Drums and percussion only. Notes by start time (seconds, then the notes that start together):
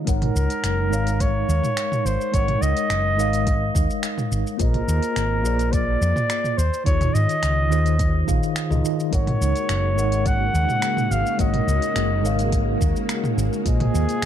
0.07 kick, closed hi-hat, shaker
0.22 closed hi-hat, mid tom
0.36 shaker
0.50 closed hi-hat, shaker
0.64 finger snap, closed hi-hat, shaker
0.93 shaker
1.07 closed hi-hat, shaker
1.20 kick, closed hi-hat, shaker
1.49 shaker
1.64 mid tom, shaker
1.77 finger snap, closed hi-hat, shaker
1.92 mid tom, shaker
2.06 shaker
2.21 shaker
2.34 kick, closed hi-hat, shaker
2.48 closed hi-hat, mid tom
2.63 shaker
2.77 closed hi-hat, shaker
2.90 finger snap, closed hi-hat, shaker
3.19 shaker
3.33 closed hi-hat, shaker
3.47 kick, closed hi-hat, shaker
3.75 kick, shaker
3.90 shaker
4.03 finger snap, closed hi-hat, shaker
4.18 mid tom, shaker
4.32 shaker
4.47 shaker
4.59 kick, closed hi-hat, shaker
4.74 closed hi-hat, mid tom
4.89 shaker
5.03 closed hi-hat, shaker
5.16 finger snap, closed hi-hat, shaker
5.45 shaker
5.59 closed hi-hat, shaker
5.73 kick, closed hi-hat, shaker
6.02 shaker
6.16 mid tom, shaker
6.30 finger snap, closed hi-hat, shaker
6.44 mid tom, shaker
6.59 shaker
6.74 shaker
6.86 kick, closed hi-hat, shaker
7.01 closed hi-hat, mid tom, shaker
7.15 shaker
7.29 closed hi-hat, shaker
7.43 finger snap, closed hi-hat, shaker
7.72 shaker
7.86 closed hi-hat, shaker
7.99 kick, closed hi-hat, shaker
8.28 kick, shaker
8.43 shaker
8.56 finger snap, closed hi-hat, shaker
8.71 mid tom, shaker
8.85 shaker
9.00 shaker
9.13 kick, closed hi-hat, shaker
9.27 closed hi-hat, mid tom
9.42 shaker
9.56 closed hi-hat, shaker
9.69 finger snap, closed hi-hat, shaker
9.98 shaker
10.12 closed hi-hat, shaker
10.26 kick, closed hi-hat, shaker
10.55 shaker
10.69 mid tom, shaker
10.82 finger snap, closed hi-hat, shaker
10.97 mid tom, shaker
11.12 shaker
11.26 shaker
11.39 kick, closed hi-hat, shaker
11.54 closed hi-hat, mid tom
11.68 shaker
11.82 closed hi-hat, shaker
11.96 finger snap, closed hi-hat, shaker
12.25 shaker
12.39 closed hi-hat, shaker
12.52 kick, closed hi-hat, shaker
12.81 kick, shaker
12.96 shaker
13.09 finger snap, closed hi-hat, shaker
13.24 mid tom, shaker
13.38 shaker
13.53 shaker
13.66 kick, closed hi-hat, shaker
13.80 closed hi-hat, mid tom
13.95 shaker
14.09 closed hi-hat, shaker